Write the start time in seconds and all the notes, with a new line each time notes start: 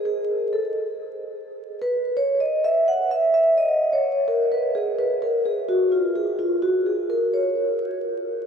0.05 G#4
0.53 A4
1.82 B4
2.17 C#5
2.40 D#5
2.64 E5
2.88 F#5
3.11 E5
3.34 E5
3.58 D#5
3.93 C#5
4.28 A#4
4.52 B4
4.75 G#4
4.99 B4
5.22 A#4
5.46 G#4
5.69 F#4
5.92 F4
6.15 G#4
6.39 F4
6.62 F#4
6.86 G#4
7.10 A#4
7.34 C#5